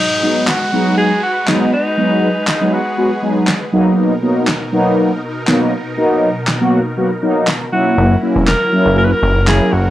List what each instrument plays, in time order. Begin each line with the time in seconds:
Already playing: supersaw synth G#3 F#4 B4, alto saxophone D#4, downlifter
0.22 analog polysynth F#3 G#3 B3 D#4
0.47 alto saxophone F#4, snare, clap
0.72 analog polysynth F#3 G#3 B3 D#4
0.98 alto saxophone G#4
1.23 alto saxophone F#4
1.47 analog polysynth F#3 G#3 B3 D#4, alto saxophone D#4, snare, clap
1.73 alto saxophone D#4
1.97 analog polysynth F#3 G#3 B3 D#4, supersaw synth G#4
2.48 alto saxophone D#4, snare, clap
2.60 analog polysynth F#3 G#3 B3 D#4
2.73 alto saxophone F#4
2.97 analog polysynth F#3 G#3 B3 F#4
3.22 analog polysynth F#3 G#3 B3 D#4
3.47 snare, clap
3.72 supersaw synth B2 D#4 A#4, analog polysynth F#3 A#3 B3 D#4
4.22 analog polysynth F#3 A#3 B3 D#4
4.47 snare, clap
4.72 analog polysynth F#3 A#3 B3 D#4
5.47 analog polysynth F#3 A#3 B3 D#4, snare, clap
5.97 analog polysynth F#3 A#3 B3 D#4
6.47 snare, clap
6.61 analog polysynth F#3 A#3 B3 F#4
6.97 analog polysynth F#3 A#3 B3 F#4
7.22 analog polysynth F#3 A#3 B3 D#4
7.47 snare, clap
7.72 analog polysynth F#3 A#3 C#4 E4, supersaw synth F#3 E4 A#4, alto saxophone F#4
7.97 analog synth bass F#1
8.22 analog polysynth F#3 A#3 C#4 E4
8.36 analog synth bass E1
8.47 alto saxophone A#4, snare, clap
8.72 analog polysynth F#3 A#3 C#4 E4
8.86 analog synth bass F#1
8.97 alto saxophone A#4
9.05 alto saxophone B4
9.12 alto saxophone A#4
9.22 analog synth bass F#1
9.47 analog polysynth F#3 A#3 C#4 E4, alto saxophone G#4, snare, clap
9.72 analog synth bass F#1, alto saxophone F#4, supersaw synth D#5